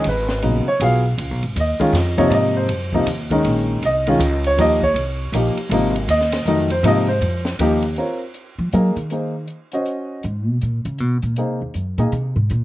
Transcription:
0.04 upright bass G#1, ride
0.09 grand piano B4
0.28 snare
0.42 upright bass A#1, grand piano C#3 F#3 B3 D#4, ride
0.66 grand piano C#5, muted upright bass stroke
0.80 upright bass B1, grand piano F#3 B3 F4 G#4 F5, hi-hat pedal, ride
1.18 upright bass C#2, ride
1.31 upright bass B1
1.43 upright bass G#1, ride
1.56 upright bass D#2, hi-hat pedal, ride
1.60 grand piano D#5
1.80 grand piano D#3 G#3 C#4 F4, muted upright bass stroke, kick, ride
1.93 upright bass F2, snare, hi-hat pedal, ride
2.18 grand piano C3 F3 A#3 D#4 C#5, kick, ride
2.29 upright bass G#2, grand piano D5, ride
2.33 grand piano D#5
2.57 grand piano C5
2.67 upright bass F#2, ride
2.93 grand piano C3 F3 A#3 D#4, kick
3.06 upright bass D#2, hi-hat pedal, ride
3.31 grand piano D#3 G#3 C#4 D#4, kick, ride
3.44 upright bass A#1, ride
3.82 upright bass C2, grand piano D#5, hi-hat pedal, ride
4.07 grand piano D#3 G#3 C#4 F4, ride
4.19 upright bass C#2, hi-hat pedal, ride
4.44 grand piano C#5, ride
4.57 upright bass D#2, grand piano F3 A#3 D#4 G4 D#5, ride
4.82 grand piano C#5, kick
4.94 upright bass C2, ride
5.32 upright bass A#1, grand piano F3 A#3 D#4 G4, hi-hat pedal, ride
5.55 muted upright bass stroke, ride
5.69 upright bass G#1, grand piano C3 F3 A#3 D#4, ride
5.95 ride
6.08 upright bass D#2, grand piano D#5, hi-hat pedal, ride
6.21 snare
6.32 snare, ride
6.45 upright bass F2, grand piano D#3 F#3 A3 D#4, hi-hat pedal
6.70 grand piano C5, ride
6.83 upright bass G#2, grand piano C3 F3 A#3 D#4, ride
6.87 grand piano D#5
7.08 grand piano C5
7.21 upright bass F2, ride
7.45 snare
7.59 upright bass D#2, grand piano F3 A#3 D#4 G4, hi-hat pedal, ride
7.82 ride
7.96 grand piano C4 F4 A#4 C#5, closed hi-hat
8.34 closed hi-hat
8.58 upright bass F3
8.73 upright bass F#3, grand piano A#3 D#4 G#4 A#4, closed hi-hat
8.96 upright bass D#3, closed hi-hat
9.10 grand piano A#3 D#4 G#4 C5, closed hi-hat
9.48 closed hi-hat
9.72 grand piano C#4 F#4 C5 D#5, closed hi-hat
9.86 closed hi-hat
10.23 upright bass G#2, closed hi-hat
10.47 upright bass B2
10.61 upright bass A#2, closed hi-hat
10.85 upright bass C#3, closed hi-hat
10.98 upright bass B2, closed hi-hat
11.22 upright bass A#2, closed hi-hat
11.36 upright bass C3, grand piano A#3 D#4 G#4 C5, closed hi-hat
11.61 upright bass D#2
11.74 upright bass F#2, closed hi-hat
11.98 upright bass A#2, grand piano A#3 D#4 G#4 D#5, closed hi-hat
12.12 upright bass C3, closed hi-hat
12.36 upright bass G#2
12.50 upright bass A#2, closed hi-hat

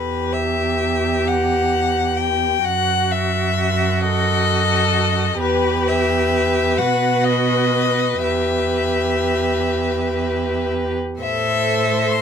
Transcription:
Already playing: cello E2, viola G4, violin B4
0.33 violin E5
1.28 violin F#5
2.17 violin G5
2.65 cello F#2, viola F#4, violin F#5
3.12 violin E5
4.02 violin A4 D#5
5.39 cello E2, viola G4, violin B4
5.88 violin E5
6.78 cello B2, viola F#4, violin F#5
7.25 violin D#5
8.22 cello E2, viola G4, violin E5
11.19 cello A2, viola A4, violin C5 E5
12.11 violin C6

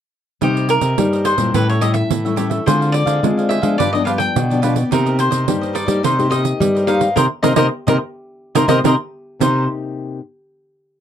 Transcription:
0.41 nylon-string guitar C3 G3 A#3 D#4, cavaquinho D#4 G4 A#4 C5 D#5, pandeiro
0.56 cavaquinho A#4 C5 D#5, pandeiro
0.68 cavaquinho A#4, muted cavaquinho stroke, pandeiro
0.81 nylon-string guitar C3, cavaquinho A#4 C5 D#5, pandeiro
0.97 nylon-string guitar G2 G3 A#3 D#4, pandeiro
1.12 cavaquinho A#4 C5 D#5, pandeiro
1.24 cavaquinho D#4 A#4 C5 D#5, pandeiro
1.38 nylon-string guitar A#2 G3 C#4 E4, cavaquinho A#4 C5 D#5, pandeiro
1.54 nylon-string guitar A2, cavaquinho G4 A4 B4 C#5 E5, pandeiro
1.69 cavaquinho A4 C#5 E5, pandeiro
1.81 nylon-string guitar G3 C#4 E4, cavaquinho G4 A4 C#5 D#5 E5, pandeiro
1.94 cavaquinho E5, muted cavaquinho stroke, pandeiro
2.10 nylon-string guitar A2 E3, pandeiro
2.25 nylon-string guitar G3 C#4 E4, cavaquinho A4 C#5 E5, pandeiro
2.36 nylon-string guitar G3 C#4 E4, cavaquinho G4 A4 C#5 E5, pandeiro
2.50 cavaquinho A4 C#5 E5, pandeiro
2.66 nylon-string guitar D3 G#3 C4 F4, cavaquinho D4 G#4 C5 F5, pandeiro
2.81 cavaquinho G#4 C5 F5, pandeiro
2.92 cavaquinho D5, muted cavaquinho stroke, pandeiro
3.06 nylon-string guitar D3, cavaquinho G#4 C5 F5, pandeiro
3.23 nylon-string guitar D3 G#3 C4 F4, pandeiro
3.38 cavaquinho G#4 C5 F5, pandeiro
3.49 cavaquinho D4 G#4 C5 E5 F5, pandeiro
3.62 nylon-string guitar F3 G#3 B3 D4, cavaquinho G#4 C5 F5, pandeiro
3.78 nylon-string guitar G2, cavaquinho F4 G4 B4 D5, pandeiro
3.93 nylon-string guitar F3 B3 D4, cavaquinho G4 B4 D5 D#5, pandeiro
4.05 nylon-string guitar F3 B3 D4, cavaquinho F4 G4 B4 D5 F5, pandeiro
4.18 cavaquinho G5, muted cavaquinho stroke, pandeiro
4.36 nylon-string guitar B2 D3, pandeiro
4.50 nylon-string guitar F3 B3 D4, cavaquinho G4 B4 D5, pandeiro
4.62 nylon-string guitar F3 B3 D4, cavaquinho F4 G4 B4 D5, pandeiro
4.75 cavaquinho G4 B4 D5, pandeiro
4.91 nylon-string guitar C3 A#3 D#4 G4, cavaquinho D#4 A#4 C5 D#5, pandeiro
5.06 cavaquinho A#4 C5 D#5, pandeiro
5.18 cavaquinho C5, muted cavaquinho stroke, pandeiro
5.31 nylon-string guitar C3, cavaquinho A#4 C5 D#5, pandeiro
5.48 nylon-string guitar G2 G3 A#3 D#4 G4, pandeiro
5.61 cavaquinho A#4 C5 D#5, pandeiro
5.73 cavaquinho D#4 A#4 C5 D5 D#5, pandeiro
5.86 nylon-string guitar G3 A#3 D#4 G4, cavaquinho A#4 C5 D#5, pandeiro
6.03 nylon-string guitar C3, cavaquinho D#4 A#4 C5 D#5, pandeiro
6.18 nylon-string guitar A#3 D#4 G4, cavaquinho A#4 C5 D#5, pandeiro
6.30 nylon-string guitar A#3 D#4 G4, cavaquinho D#4 A#4 C5 D#5, pandeiro
6.44 muted cavaquinho stroke, pandeiro
6.60 nylon-string guitar G2 G3, pandeiro
6.75 cavaquinho A#4 C5 D#5, pandeiro
6.87 nylon-string guitar A#3 D#4 G4, cavaquinho D#4 A#4 C5 D#5 F5, pandeiro
7.00 cavaquinho A#4 C5 D#5, pandeiro
7.16 nylon-string guitar C3 A#3 C4 D#4, cavaquinho A#4 C5 D#5, pandeiro
7.43 nylon-string guitar C3 A#3 C4 D#4, cavaquinho A#4 C5 D#5, pandeiro
7.56 nylon-string guitar C3 A#3 C4 D#4, cavaquinho A#4 C5 D#5, pandeiro
7.87 nylon-string guitar C3 A#3 C4 D#4, cavaquinho A#4 C5 D#5, pandeiro
8.55 nylon-string guitar C3 A#3 C4 D#4, cavaquinho A#4 C5 D#5, pandeiro
8.68 nylon-string guitar C3 A#3 C4 D#4, cavaquinho A#4 C5 D#5, pandeiro
8.84 nylon-string guitar C3 A#3 C4 D#4, cavaquinho A#4 C5 D#5, pandeiro
9.39 nylon-string guitar C3 A#3 D#4 G4, cavaquinho D#4 A#4 C5 D#5, pandeiro

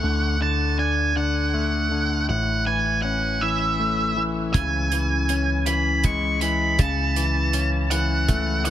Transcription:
Already playing: clean electric guitar A3, lead electric guitar F#5
0.03 tine electric piano D2, clean electric guitar D3
0.41 clean electric guitar D3, lead electric guitar A5
0.78 clean electric guitar D4, lead electric guitar G#5
1.16 clean electric guitar D3, lead electric guitar F#5
1.54 clean electric guitar A3
1.91 clean electric guitar D3
2.29 tine electric piano A1, clean electric guitar A2, lead electric guitar F#5
2.67 clean electric guitar E3, lead electric guitar G#5
3.02 clean electric guitar C#4, lead electric guitar F#5
3.41 clean electric guitar E3, lead electric guitar E5
3.79 clean electric guitar A3
4.17 clean electric guitar E3
4.54 tine electric piano C#2, clean electric guitar C#3, lead electric guitar G#5, kick, closed hi-hat
4.92 clean electric guitar E3, closed hi-hat
5.29 clean electric guitar C#4, closed hi-hat
5.66 clean electric guitar E3, lead electric guitar B5, closed hi-hat
6.04 clean electric guitar G#3, lead electric guitar C#6, kick, closed hi-hat
6.41 clean electric guitar E3, lead electric guitar B5, closed hi-hat
6.79 tine electric piano C#2, clean electric guitar C#3, lead electric guitar A5, kick, closed hi-hat
7.16 clean electric guitar E3, closed hi-hat
7.53 clean electric guitar C#4, closed hi-hat
7.91 clean electric guitar E3, lead electric guitar F#5, closed hi-hat
8.28 clean electric guitar A3, kick, closed hi-hat
8.65 clean electric guitar E3, lead electric guitar F#5, closed hi-hat

